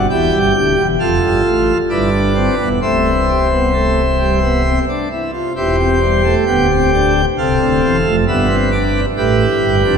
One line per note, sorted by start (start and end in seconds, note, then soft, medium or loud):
0.09 0.29 E1 medium
0.09 0.29 E2 medium
0.09 0.38 E4 medium
0.09 0.53 G4 medium
0.09 0.87 G5 medium
0.33 0.52 G1 medium
0.33 0.52 G2 medium
0.55 0.74 D1 medium
0.55 0.74 D2 medium
0.55 0.83 G4 medium
0.79 0.97 E1 medium
0.79 0.97 E2 medium
1.00 1.19 F1 medium
1.00 1.19 F2 medium
1.00 1.78 F4 medium
1.00 1.78 A4 medium
1.00 1.77 F5 medium
1.21 1.41 G1 medium
1.21 1.41 G2 medium
1.45 1.73 A1 medium
1.45 1.73 A2 medium
1.90 2.49 G1 medium
1.90 2.49 G2 medium
1.90 2.10 E4 medium
1.90 2.69 B4 medium
1.90 2.69 D5 medium
2.13 2.33 D4 medium
2.35 2.55 C4 medium
2.60 2.79 E1 medium
2.60 2.79 E2 medium
2.60 2.79 B3 medium
2.81 4.79 C1 medium
2.81 4.79 C2 medium
2.81 3.10 A3 medium
2.81 4.79 C5 medium
2.81 4.79 E5 medium
3.29 3.48 G3 soft
3.52 3.71 B3 medium
3.73 4.02 A3 soft
4.19 4.39 G3 soft
4.42 4.62 B3 medium
4.65 4.85 C4 medium
4.89 5.08 D4 medium
5.11 5.31 E4 medium
5.33 5.53 F4 medium
5.56 6.35 E1 medium
5.56 6.35 E2 medium
5.56 5.76 E4 medium
5.56 7.13 G4 medium
5.56 6.35 C5 medium
5.79 5.99 C4 medium
6.01 6.21 G3 medium
6.24 6.44 A3 medium
6.46 7.25 D1 medium
6.46 7.25 D2 soft
6.46 6.67 B3 medium
6.46 7.25 G5 medium
6.71 6.90 C4 medium
6.93 7.21 D4 medium
7.38 7.58 C1 medium
7.38 7.58 C2 medium
7.38 7.96 C4 medium
7.38 8.16 A4 medium
7.38 8.16 F5 medium
7.60 7.80 D1 medium
7.60 7.80 D2 medium
7.83 8.02 E1 medium
7.83 8.02 E2 medium
8.05 8.25 F1 medium
8.05 8.25 F2 medium
8.05 8.25 A3 medium
8.27 9.05 G1 medium
8.27 9.05 G2 medium
8.27 8.47 B3 medium
8.27 9.06 B4 medium
8.27 8.56 E5 medium
8.49 8.69 C4 medium
8.72 9.00 D4 medium
8.72 9.00 D5 medium
9.17 9.45 A1 medium
9.17 9.45 A2 medium
9.17 9.76 E4 medium
9.17 9.95 G4 medium
9.17 9.95 B4 medium
9.62 9.82 G1 medium
9.62 9.82 G2 medium
9.84 9.98 F1 medium
9.84 9.98 F2 medium
9.84 9.98 D4 medium